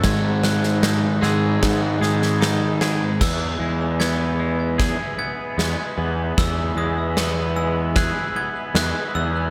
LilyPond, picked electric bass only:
\new Staff \with { instrumentName = "Picked electric bass" } { \clef bass \time 4/4 \key e \major \tempo 4 = 76 gis,4. gis,8 gis,8 gis,4. | e,8 e,2 r8 e,16 r16 e,8 | e,8 e,2 r8 e,16 r16 e,8 | }